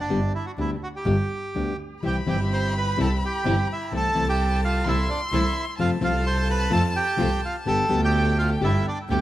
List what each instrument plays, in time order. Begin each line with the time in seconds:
0.00 bandoneon D4
0.10 double bass G1, nylon-string guitar D3 G3 B3 D4 G4
0.35 bandoneon E4
0.46 bandoneon F#4
0.58 double bass D2, nylon-string guitar D3 G3 B3 D4 G4, bandoneon E4
0.83 bandoneon F#4
0.96 bandoneon G4
1.06 double bass G1, nylon-string guitar D3 G3 B3 D4 G4
1.55 double bass D2, nylon-string guitar D3 G3 B3 D4 G4
2.03 double bass C2, nylon-string guitar C3 E3 G3 C4 E4, string section C4 E4 G4, bandoneon G4, violin B5
2.07 bandoneon G5
2.26 double bass G1, nylon-string guitar C3 E3 G3 C4 E4, string section C4 E4 G4, bandoneon G4 G5
2.53 bandoneon C5 C6
2.77 bandoneon B4 B5
2.97 double bass C2, nylon-string guitar C3 E3 G3 C4 E4, string section C4 E4 G4, bandoneon A4
3.02 bandoneon A5
3.25 bandoneon G4 G5
3.45 double bass G1, nylon-string guitar C3 E3 G3 C4 E4, string section C4 E4 G4
3.73 bandoneon E4 E5
3.91 double bass C2, nylon-string guitar C3 E3 A3 C4 E4, string section C4 E4 A4, violin A5
3.96 bandoneon A4 A5
4.15 double bass C2, nylon-string guitar C3 E3 A3 C4 E4, string section C4 E4 A4
4.28 bandoneon G4 G5
4.64 bandoneon F4 F5
4.84 double bass C2, nylon-string guitar C3 E3 A3 C4 E4, string section C4 E4 A4, violin C6
4.88 bandoneon E4 E5
5.09 bandoneon D4 D5
5.32 double bass C2, nylon-string guitar C3 E3 A3 C4 E4, string section C4 E4 A4, bandoneon E4 E5
5.78 double bass F2, nylon-string guitar C3 F3 A3 C4 F4, string section C4 F4 A4, bandoneon F4 F5, violin A5
6.01 double bass C2, nylon-string guitar C3 F3 A3 C4 F4, string section C4 F4 A4, bandoneon F4 F5
6.26 bandoneon C5 C6
6.50 bandoneon B4 B5
6.70 double bass F2, nylon-string guitar C3 F3 A3 C4 F4, string section C4 F4 A4, bandoneon A4 A5
6.96 bandoneon G4 G5
7.17 double bass C2, nylon-string guitar C3 F3 A3 C4 F4, string section C4 F4 A4
7.45 bandoneon F4 F5
7.66 double bass G1, nylon-string guitar D3 G3 B3 G4, string section B3 G4 A4, bandoneon A4 A5, violin G5
7.89 double bass D2, nylon-string guitar D3 G3 B3 G4, string section B3 G4 A4
8.04 bandoneon G4 G5
8.38 bandoneon F4 F5
8.60 double bass G1, nylon-string guitar D3 G3 B3 G4, string section B3 G4 A4
8.64 bandoneon E4 E5
8.88 bandoneon D4 D5
9.09 double bass D2, nylon-string guitar D3 G3 B3 G4, string section B3 G4 A4, bandoneon G4 G5